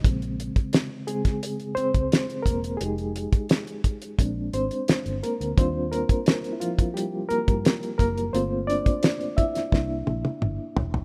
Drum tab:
HH |xxxxx-xxxxxxxxxx|xxxxxxxxx-xxxxxx|x-xxxxxxx-xxxxxx|x-xxxxxx--------|
SD |----o--o----o---|----o-------o---|----o-------o---|----o--oo-------|
T1 |----------------|----------------|----------------|----------oo----|
T2 |----------------|----------------|----------------|------------o---|
FT |----------------|----------------|----------------|--------------oo|
BD |o--o---o---o--o-|---o--o-o-------|o--o---o---o--o-|---o--o-o-------|